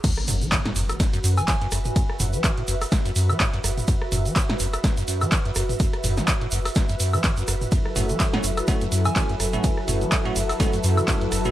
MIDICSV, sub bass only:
0, 0, Header, 1, 2, 480
1, 0, Start_track
1, 0, Tempo, 480000
1, 39, Time_signature, 4, 2, 24, 8
1, 11511, End_track
2, 0, Start_track
2, 0, Title_t, "Sub bass"
2, 0, Program_c, 0, 38
2, 279, Note_on_c, 0, 30, 101
2, 454, Note_off_c, 0, 30, 0
2, 759, Note_on_c, 0, 30, 95
2, 934, Note_off_c, 0, 30, 0
2, 1239, Note_on_c, 0, 42, 94
2, 1414, Note_off_c, 0, 42, 0
2, 1719, Note_on_c, 0, 30, 94
2, 1894, Note_off_c, 0, 30, 0
2, 2199, Note_on_c, 0, 30, 104
2, 2374, Note_off_c, 0, 30, 0
2, 2679, Note_on_c, 0, 30, 94
2, 2854, Note_off_c, 0, 30, 0
2, 3159, Note_on_c, 0, 42, 94
2, 3334, Note_off_c, 0, 42, 0
2, 3639, Note_on_c, 0, 30, 94
2, 3815, Note_off_c, 0, 30, 0
2, 4119, Note_on_c, 0, 30, 104
2, 4295, Note_off_c, 0, 30, 0
2, 4599, Note_on_c, 0, 30, 95
2, 4775, Note_off_c, 0, 30, 0
2, 5079, Note_on_c, 0, 42, 92
2, 5254, Note_off_c, 0, 42, 0
2, 5559, Note_on_c, 0, 30, 93
2, 5735, Note_off_c, 0, 30, 0
2, 6039, Note_on_c, 0, 30, 103
2, 6214, Note_off_c, 0, 30, 0
2, 6519, Note_on_c, 0, 30, 93
2, 6694, Note_off_c, 0, 30, 0
2, 6999, Note_on_c, 0, 42, 93
2, 7175, Note_off_c, 0, 42, 0
2, 7479, Note_on_c, 0, 30, 91
2, 7655, Note_off_c, 0, 30, 0
2, 7959, Note_on_c, 0, 30, 101
2, 8135, Note_off_c, 0, 30, 0
2, 8440, Note_on_c, 0, 30, 95
2, 8615, Note_off_c, 0, 30, 0
2, 8919, Note_on_c, 0, 42, 95
2, 9095, Note_off_c, 0, 42, 0
2, 9399, Note_on_c, 0, 30, 95
2, 9575, Note_off_c, 0, 30, 0
2, 9879, Note_on_c, 0, 30, 104
2, 10054, Note_off_c, 0, 30, 0
2, 10359, Note_on_c, 0, 30, 95
2, 10535, Note_off_c, 0, 30, 0
2, 10839, Note_on_c, 0, 42, 92
2, 11014, Note_off_c, 0, 42, 0
2, 11319, Note_on_c, 0, 30, 95
2, 11494, Note_off_c, 0, 30, 0
2, 11511, End_track
0, 0, End_of_file